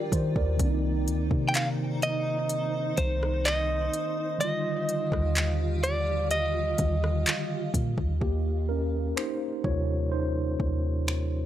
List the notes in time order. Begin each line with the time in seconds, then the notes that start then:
Already playing: F4 G4 A#4 D5 G5
0.12 D#3 C5, kick, closed hi-hat
0.36 D#2 A#4 D5, kick
0.57 C2 D#3 A#3 D#4 C5 A#5, kick, closed hi-hat
0.61 C4 D4
0.70 D#4
1.07 D2, closed hi-hat
1.31 C3, kick
1.49 G5
1.55 F5, clap, closed hi-hat
2.02 D#5, closed hi-hat
2.49 C6, closed hi-hat
2.97 C2 C5, kick, closed hi-hat
3.23 cross-stick
3.45 D#5, clap, closed hi-hat
3.94 closed hi-hat
4.38 D#3 G3 F4 G4 D#5 F5, closed hi-hat
4.42 D3 F4
4.89 closed hi-hat
5.12 D#2, kick, cross-stick
5.36 clap, closed hi-hat
5.83 D5, closed hi-hat
6.31 D#5, closed hi-hat
6.78 D#2 D3 D#3 G3 F4, kick, closed hi-hat
7.04 cross-stick
7.26 clap, closed hi-hat
7.74 A#2, kick, closed hi-hat
7.98 D#2, kick
8.21 D#2 A#3 G4, kick
8.69 C#4 A#4
9.16 D#4 C5, finger snap
9.64 D#2 C3 G3 F4 C#5, kick
10.12 D#4 C5
10.60 D#2, kick
11.08 finger snap